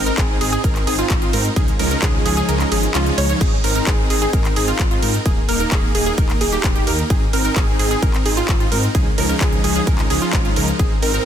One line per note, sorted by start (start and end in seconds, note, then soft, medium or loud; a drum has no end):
0.00 0.11 G#1 medium
0.06 0.16 C4 medium
0.06 0.16 D#4 medium
0.06 0.16 A#4 loud
0.06 closed hi-hat medium
0.18 0.34 G#1 loud
0.18 0.38 C4 loud
0.18 0.38 G#4 loud
0.18 kick loud
0.18 clap loud
0.18 closed hi-hat medium
0.18 ride medium
0.41 0.57 G#1 medium
0.41 0.51 C4 medium
0.41 0.51 D#4 medium
0.41 0.51 G#4 loud
0.41 open hi-hat loud
0.41 ride medium
0.52 0.61 C4 loud
0.52 0.61 D#4 medium
0.52 0.61 G#4 loud
0.52 closed hi-hat medium
0.64 0.80 G#1 loud
0.64 0.84 C4 medium
0.64 0.84 D#4 medium
0.64 0.84 A#4 medium
0.64 kick loud
0.64 closed hi-hat medium
0.64 ride medium
0.75 clap soft
0.75 closed hi-hat soft
0.87 1.03 G#1 loud
0.87 0.96 C4 medium
0.87 0.96 D#4 medium
0.87 0.96 G#4 loud
0.87 open hi-hat loud
0.87 ride medium
0.99 1.18 C4 medium
0.99 1.18 D#4 medium
0.99 1.18 F4 loud
0.99 closed hi-hat medium
1.10 1.26 G#1 loud
1.10 kick loud
1.10 clap loud
1.10 closed hi-hat medium
1.10 ride medium
1.22 1.31 C4 loud
1.22 1.30 D#4 medium
1.22 1.30 F4 loud
1.22 1.31 F4 loud
1.22 closed hi-hat soft
1.33 1.49 G#2 loud
1.33 1.46 C4 medium
1.33 1.46 D#4 medium
1.33 1.46 A#4 loud
1.33 1.47 A#4 loud
1.33 open hi-hat loud
1.33 ride medium
1.45 closed hi-hat medium
1.56 1.73 C#2 loud
1.56 1.70 F3 medium
1.56 1.70 G#3 medium
1.56 1.70 C#4 medium
1.56 1.70 D#4 medium
1.56 1.70 G#4 medium
1.56 kick loud
1.56 closed hi-hat medium
1.56 ride medium
1.68 closed hi-hat soft
1.79 1.96 C#2 loud
1.79 1.88 F3 loud
1.79 1.88 G#3 medium
1.79 1.88 C#4 medium
1.79 1.88 D#4 medium
1.79 1.88 A#4 loud
1.79 open hi-hat loud
1.79 ride medium
1.91 2.01 F3 medium
1.91 2.01 G#3 medium
1.91 2.01 C#4 medium
1.91 2.01 D#4 medium
1.91 2.01 A#4 loud
1.91 closed hi-hat medium
2.02 2.19 C#2 medium
2.02 2.22 F3 medium
2.02 2.22 G#3 medium
2.02 2.22 G#4 loud
2.02 kick loud
2.02 clap loud
2.02 closed hi-hat medium
2.02 ride medium
2.26 2.42 C#2 medium
2.26 2.35 F3 medium
2.26 2.35 G#3 medium
2.26 2.35 C#4 medium
2.26 2.35 D#4 medium
2.26 2.35 G#4 loud
2.26 open hi-hat loud
2.26 ride medium
2.37 2.46 F3 loud
2.37 2.46 G#3 medium
2.37 2.46 C#4 medium
2.37 2.46 D#4 medium
2.37 2.46 G#4 loud
2.37 closed hi-hat medium
2.49 2.65 C#2 loud
2.49 2.68 F3 medium
2.49 2.68 G#3 medium
2.49 2.68 C#4 medium
2.49 2.68 D#4 medium
2.49 2.68 A#4 medium
2.49 closed hi-hat medium
2.49 ride medium
2.60 clap soft
2.60 closed hi-hat soft
2.72 2.88 G#1 medium
2.72 2.85 F3 medium
2.72 2.85 G#3 medium
2.72 2.85 C#4 medium
2.72 2.85 D#4 medium
2.72 2.85 G#4 medium
2.72 open hi-hat loud
2.72 ride medium
2.83 closed hi-hat medium
2.95 3.11 C#2 medium
2.95 3.14 F3 medium
2.95 3.14 G#3 medium
2.95 3.15 C#4 medium
2.95 3.14 D#4 medium
2.95 3.14 F4 loud
2.95 clap loud
2.95 closed hi-hat medium
2.95 ride medium
3.06 closed hi-hat soft
3.18 3.34 C#2 loud
3.18 3.28 F3 loud
3.18 3.28 G#3 medium
3.18 3.28 C#4 medium
3.18 3.28 D#4 medium
3.18 3.28 C#5 loud
3.18 open hi-hat loud
3.18 ride medium
3.29 3.39 F3 medium
3.29 3.39 G#3 medium
3.29 3.39 C#4 medium
3.29 3.39 D#4 medium
3.29 3.39 C#5 loud
3.29 closed hi-hat medium
3.41 3.57 G#1 loud
3.41 3.54 C4 medium
3.41 3.54 D#4 medium
3.41 3.54 G#4 medium
3.41 kick loud
3.41 closed hi-hat medium
3.41 ride medium
3.41 crash medium
3.64 3.80 G#1 medium
3.64 3.73 C4 medium
3.64 3.73 D#4 medium
3.64 3.73 A#4 loud
3.64 open hi-hat loud
3.64 ride medium
3.76 3.85 C4 medium
3.76 3.85 D#4 medium
3.76 3.85 A#4 loud
3.76 closed hi-hat medium
3.87 4.03 G#1 medium
3.87 4.07 C4 loud
3.87 4.07 D#4 medium
3.87 4.07 G#4 loud
3.87 kick loud
3.87 clap loud
3.87 closed hi-hat medium
3.87 ride medium
4.10 4.26 G#1 medium
4.10 4.20 C4 medium
4.10 4.20 D#4 medium
4.10 4.20 G#4 loud
4.10 open hi-hat loud
4.10 ride medium
4.22 4.31 C4 loud
4.22 4.31 D#4 medium
4.22 4.31 G#4 loud
4.22 closed hi-hat medium
4.33 4.49 G#1 loud
4.33 4.53 C4 medium
4.33 4.53 D#4 medium
4.33 4.53 A#4 medium
4.33 kick loud
4.33 closed hi-hat medium
4.33 ride medium
4.45 clap soft
4.45 closed hi-hat soft
4.56 4.73 G#1 medium
4.56 4.65 C4 medium
4.56 4.65 D#4 medium
4.56 4.65 G#4 loud
4.56 open hi-hat loud
4.56 ride medium
4.68 4.88 C4 loud
4.68 4.88 D#4 medium
4.68 4.88 F4 loud
4.68 closed hi-hat medium
4.79 4.96 G#1 loud
4.79 kick loud
4.79 clap loud
4.79 closed hi-hat medium
4.79 ride medium
4.91 5.00 C4 medium
4.91 5.00 D#4 medium
4.91 5.00 F4 loud
4.91 closed hi-hat soft
5.03 5.19 G#2 loud
5.03 5.16 C4 medium
5.03 5.16 D#4 medium
5.03 5.16 A#4 loud
5.03 5.16 A#4 medium
5.03 open hi-hat loud
5.03 ride medium
5.14 closed hi-hat medium
5.26 5.42 D#1 loud
5.26 5.39 A#3 medium
5.26 5.39 D#4 medium
5.26 5.39 G#4 medium
5.26 kick loud
5.26 closed hi-hat medium
5.26 ride medium
5.49 5.65 D#1 medium
5.49 5.57 A#3 loud
5.49 5.57 D#4 medium
5.49 5.57 A#4 loud
5.49 open hi-hat loud
5.49 ride medium
5.60 5.70 A#3 medium
5.60 5.70 D#4 medium
5.60 5.70 A#4 loud
5.60 closed hi-hat medium
5.72 5.88 D#1 medium
5.72 5.91 D#4 medium
5.72 5.91 G#4 loud
5.72 kick loud
5.72 clap loud
5.72 closed hi-hat medium
5.72 ride medium
5.95 6.11 D#1 medium
5.95 6.05 A#3 medium
5.95 6.05 D#4 medium
5.95 6.05 G#4 loud
5.95 open hi-hat loud
5.95 ride medium
6.06 6.15 A#3 loud
6.06 6.15 D#4 medium
6.06 6.15 G#4 loud
6.06 closed hi-hat medium
6.18 6.34 D#1 loud
6.18 6.38 A#3 medium
6.18 6.38 D#4 medium
6.18 6.38 A#4 medium
6.18 kick loud
6.18 closed hi-hat medium
6.18 ride medium
6.29 clap soft
6.29 closed hi-hat soft
6.41 6.57 D#1 medium
6.41 6.50 A#3 loud
6.41 6.50 D#4 medium
6.41 6.50 G#4 loud
6.41 open hi-hat loud
6.41 ride medium
6.52 6.72 A#3 loud
6.52 6.72 D#4 medium
6.52 6.72 G4 loud
6.52 closed hi-hat medium
6.64 6.80 D#1 loud
6.64 kick loud
6.64 clap loud
6.64 closed hi-hat medium
6.64 ride medium
6.75 6.84 A#3 loud
6.75 6.84 D#4 medium
6.75 6.84 G4 loud
6.75 closed hi-hat soft
6.87 7.03 D#2 loud
6.87 7.00 A#3 medium
6.87 7.00 D#4 medium
6.87 7.00 A#4 loud
6.87 open hi-hat loud
6.87 ride medium
6.99 closed hi-hat medium
7.10 7.26 G#1 loud
7.10 7.23 C4 medium
7.10 7.23 D#4 medium
7.10 7.23 G#4 medium
7.10 kick loud
7.10 closed hi-hat medium
7.10 ride medium
7.33 7.49 G#1 loud
7.33 7.42 C4 loud
7.33 7.42 D#4 medium
7.33 7.42 A#4 loud
7.33 open hi-hat loud
7.33 ride medium
7.45 7.55 C4 medium
7.45 7.55 D#4 medium
7.45 7.55 A#4 loud
7.45 closed hi-hat medium
7.56 7.73 G#1 medium
7.56 7.76 C4 loud
7.56 7.76 D#4 medium
7.56 7.76 G#4 loud
7.56 kick loud
7.56 clap loud
7.56 closed hi-hat medium
7.56 ride medium
7.79 7.96 G#1 medium
7.79 7.89 C4 medium
7.79 7.89 D#4 medium
7.79 7.89 G#4 loud
7.79 open hi-hat loud
7.79 ride medium
7.91 8.00 C4 loud
7.91 8.00 D#4 medium
7.91 8.00 G#4 loud
7.91 closed hi-hat medium
8.02 8.19 G#1 loud
8.02 8.22 C4 medium
8.02 8.22 D#4 medium
8.02 8.22 A#4 medium
8.02 kick loud
8.02 closed hi-hat medium
8.02 ride medium
8.14 clap soft
8.14 closed hi-hat soft
8.26 8.42 G#1 medium
8.26 8.34 C4 loud
8.26 8.34 D#4 medium
8.26 8.34 G#4 loud
8.26 open hi-hat loud
8.26 ride medium
8.37 8.57 C4 loud
8.37 8.57 D#4 medium
8.37 8.57 F4 loud
8.37 closed hi-hat medium
8.48 8.65 G#1 loud
8.48 kick loud
8.48 clap loud
8.48 closed hi-hat medium
8.48 ride medium
8.60 8.69 C4 medium
8.60 8.69 D#4 medium
8.60 8.69 F4 loud
8.60 closed hi-hat soft
8.72 8.88 G#2 loud
8.72 8.85 C4 medium
8.72 8.85 D#4 medium
8.72 8.85 A#4 medium
8.72 open hi-hat loud
8.72 ride medium
8.83 closed hi-hat medium
8.95 9.11 C#2 loud
8.95 9.08 F3 medium
8.95 9.08 G#3 medium
8.95 9.08 C#4 medium
8.95 9.08 D#4 medium
8.95 9.08 G#4 medium
8.95 kick loud
8.95 closed hi-hat medium
8.95 ride medium
9.18 9.34 C#2 medium
9.18 9.27 F3 loud
9.18 9.27 G#3 medium
9.18 9.27 C#4 medium
9.18 9.27 D#4 medium
9.18 9.27 A#4 loud
9.18 open hi-hat loud
9.18 ride medium
9.29 9.39 F3 medium
9.29 9.39 G#3 medium
9.29 9.39 C#4 medium
9.29 9.39 D#4 medium
9.29 9.39 A#4 loud
9.29 closed hi-hat medium
9.41 9.57 C#2 medium
9.41 9.61 F3 loud
9.41 9.61 G#3 medium
9.41 9.61 C#4 medium
9.41 9.61 D#4 medium
9.41 9.61 G#4 loud
9.41 kick loud
9.41 clap loud
9.41 closed hi-hat medium
9.41 ride medium
9.53 closed hi-hat soft
9.64 9.80 C#2 medium
9.64 9.74 F3 medium
9.64 9.74 G#3 medium
9.64 9.74 C#4 medium
9.64 9.74 D#4 medium
9.64 9.74 G#4 loud
9.64 open hi-hat loud
9.64 ride medium
9.76 9.84 F3 loud
9.76 9.84 G#3 medium
9.76 9.84 C#4 medium
9.76 9.84 D#4 medium
9.76 9.84 G#4 loud
9.87 10.03 C#2 medium
9.87 10.07 C#4 medium
9.87 10.07 D#4 medium
9.87 10.07 A#4 medium
9.87 kick loud
9.87 closed hi-hat medium
9.87 ride medium
9.99 clap soft
9.99 closed hi-hat soft
10.10 10.18 C#2 loud
10.10 10.19 F3 loud
10.10 10.19 G#3 medium
10.10 10.19 C#4 medium
10.10 10.19 D#4 medium
10.10 10.19 G#4 loud
10.10 open hi-hat loud
10.10 ride medium
10.22 10.41 F3 loud
10.22 10.41 G#3 medium
10.22 10.41 C#4 medium
10.22 10.41 D#4 medium
10.22 10.41 F4 loud
10.22 closed hi-hat medium
10.33 10.49 G#1 loud
10.33 kick loud
10.33 clap loud
10.33 closed hi-hat medium
10.33 ride medium
10.45 10.54 F3 medium
10.45 10.54 G#3 medium
10.45 10.54 C#4 medium
10.45 10.54 D#4 medium
10.45 10.54 F4 loud
10.45 closed hi-hat soft
10.56 10.73 C#2 medium
10.56 10.70 F3 medium
10.56 10.70 G#3 medium
10.56 10.70 C#4 medium
10.56 10.70 D#4 medium
10.56 10.70 A#4 loud
10.56 open hi-hat loud
10.56 ride medium
10.68 closed hi-hat medium
10.79 10.96 G#1 loud
10.79 10.93 C4 medium
10.79 10.93 D#4 medium
10.79 10.93 G#4 medium
10.79 kick loud
10.79 closed hi-hat medium
10.79 ride medium
11.02 11.19 G#1 loud
11.02 11.11 C4 medium
11.02 11.11 D#4 medium
11.02 11.11 A#4 loud
11.02 open hi-hat loud
11.02 ride medium
11.14 11.24 C4 medium
11.14 11.24 D#4 medium
11.14 11.24 A#4 loud
11.14 closed hi-hat medium